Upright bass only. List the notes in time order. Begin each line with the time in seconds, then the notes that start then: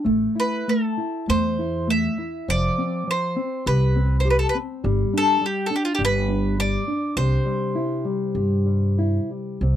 0.06 A1
1.29 E2
2.48 F1
3.66 C2
4.84 G1
5.99 G1
7.17 C2
8.35 G2
9.61 C2